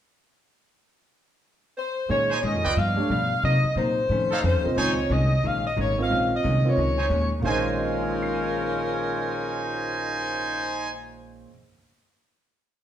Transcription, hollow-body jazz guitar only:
2.10 A#2 D#3 G#3 C#4
2.43 A#2 D#3 G#3 C#4
2.76 G2 F3 B3 D4
3.10 G2 F3 B3 D4
3.43 C3 F#3 A#3 D#4
3.77 C3 F#3 A#3 D#4
4.10 F2 D#3 A3 C#4
4.43 F2 D#3 A3 C#4
4.77 A#2 D#3 G#3 C#4
5.10 A#2 D#3 G#3 C#4
5.43 A#2 D#3 G#3 C#4
5.76 A#2 D#3 G#3 C#4
6.10 A#2 D#3 G#3 C#4
6.44 A#2 D#3 G#3 C#4
6.77 A#2 D#3 G#3 C#4
7.10 A#2 D#3 G#3 C#4
7.39 A#2
7.46 D#3
7.51 G#3
7.56 C#4

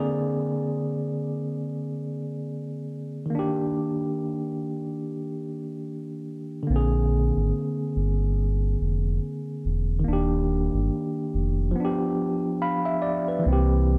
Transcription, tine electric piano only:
Already playing: D3 A#3 C4 D5
0.00 G#4
3.26 D#3
3.30 A#3
3.35 D4
3.39 G4
6.63 D3
6.67 A#3
6.71 C4
6.76 G#4
9.99 D#3
10.04 A#3
10.08 D4
10.13 G4
11.71 F3
11.76 B3
11.80 D4
11.85 G4
12.62 F5 B5
12.85 E5
13.02 D5
13.28 B4
13.39 E3
13.43 A#3
13.48 C4
13.53 G4

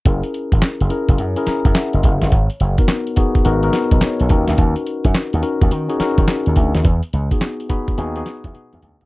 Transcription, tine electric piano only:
0.05 C#4 E4 G#4 A#4
0.90 C#4 E4 G#4 A#4
1.36 C#4 E4 G#4 A#4
1.48 A#5
1.65 F#5
1.75 E5
1.94 D#5
2.22 C#5
2.78 B3 D#4 F#4 A#4
3.16 B3 D#4 F#4 G#4
3.44 B3 D#4 F#4 A#4
3.63 B3 D#4 F#4 A#4
3.92 D#5
4.02 C#5
4.20 B4
4.29 C#4 D#4 F#4 A#4
5.42 C#4 D#4 F#4 A#4
5.89 C#4 D#4 F#4 G#4
5.99 C#4 D#4 F#4 A#4
7.31 B3 D#4 F#4 G#4
7.69 B3 D#4 F#4 G#4 B5
7.97 B3 D#4 F#4 G#4 G#5
8.16 B3 D#4 F#4 G#4
8.54 B3 D#4 F#4 G#4 D#5

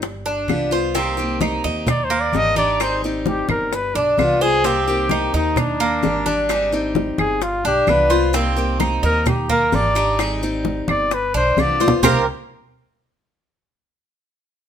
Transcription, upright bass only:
Already playing: G1
0.48 C2
1.64 D#2
2.33 G#1
3.49 G1
3.95 B1
4.18 C2
5.33 D#2
6.03 G#1
7.18 G1
7.64 B1
7.88 C2
9.03 D#2
9.72 G#1
10.88 G1
11.34 B1
11.57 C2
12.03 C2

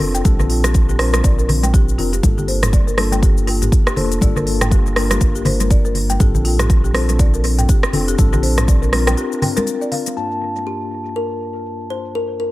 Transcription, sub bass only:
0.00 F1
0.25 A#1
1.24 A#1
1.99 F1
2.23 G1
3.97 F1
4.22 G1
5.21 G1
6.20 A#1
7.94 F1
8.19 A#1

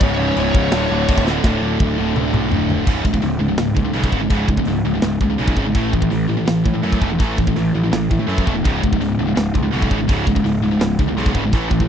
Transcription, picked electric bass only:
0.01 C#1
0.36 C#1
0.54 C#1
0.71 D1
0.90 D1
1.09 D1
1.44 D1
1.61 D1
1.80 D1
1.98 D1
2.16 D1
2.33 B1
2.51 D1
2.87 C#1
3.05 C#1
3.22 C#1
3.39 C#1
3.58 C#1
3.77 C#2
3.93 B1
4.12 G#1
4.30 C#1
4.48 C#1
4.66 C#1
4.85 C#1
5.02 C#1
5.21 C#2
5.39 B1
5.56 G#1
5.76 A1
5.93 A1
6.11 A1
6.28 A1
6.47 A1
6.65 A2
6.83 F#2
7.01 E1
7.20 A1
7.38 A1
7.56 A1
7.74 A1
7.92 A1
8.11 A2
8.28 F#2
8.47 E1
8.66 C#1
8.84 C#1
8.99 C#1
9.19 C#1
9.36 C#1
9.55 C#2
9.73 B1
9.91 G#1
10.09 C#1
10.27 C#1
10.45 C#1
10.62 C#1
10.79 C#1
10.99 C#2
11.16 B1
11.35 G#1
11.53 A1
11.70 A1

